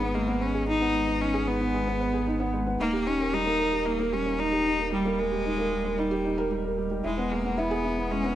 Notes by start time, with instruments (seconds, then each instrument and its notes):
Already playing: sub bass G#1, felt piano G#3 D#4 G#4 B4, cello B3
0.00 felt piano B3
0.14 felt piano G#3, cello A#3
0.28 felt piano B3
0.41 cello C#4, felt piano B4
0.54 felt piano G#4
0.68 felt piano D#4, cello D#4
0.81 felt piano B3
0.94 felt piano G#3
1.08 felt piano B3
1.20 cello C#4, felt piano D#4
1.34 felt piano G#4
1.47 cello B3, felt piano D#4
1.60 felt piano B3
1.74 felt piano G#3
1.87 felt piano B3
2.00 felt piano B4
2.14 felt piano G#4
2.27 felt piano D#4
2.40 felt piano B3
2.53 felt piano G#3
2.66 felt piano B3
2.80 sub bass D#1, cello A#3, felt piano D#4
2.93 felt piano G4
3.06 cello C#4, felt piano D#4
3.19 felt piano A#3
3.33 felt piano G3, cello D#4
3.46 felt piano A#3
3.59 felt piano A#4
3.73 felt piano G4
3.86 cello A#3, felt piano D#4
3.99 felt piano A#3
4.13 felt piano G3, cello C#4
4.26 felt piano A#3
4.39 felt piano D#4, cello D#4
4.52 felt piano G4
4.65 felt piano D#4
4.79 felt piano A#3
4.92 felt piano G3, cello G3
5.05 felt piano A#3
5.18 cello G#3, felt piano A#4
5.32 felt piano G4
5.45 felt piano D#4
5.58 felt piano A#3
5.71 felt piano G3
5.85 felt piano A#3
5.98 cello G3, felt piano D#4
6.11 felt piano G4
6.24 felt piano D#4
6.38 felt piano A#4
6.51 felt piano G3
6.65 felt piano A#4
6.78 felt piano G3
6.91 felt piano G3
7.04 sub bass E1, cello G#3, felt piano E4
7.18 felt piano B3
7.31 felt piano G#3, cello A#3
7.45 felt piano B3
7.58 cello B3, felt piano E4
7.71 felt piano G#4
7.84 felt piano E4
7.97 felt piano B3
8.11 felt piano G#3, cello C#4
8.24 felt piano B3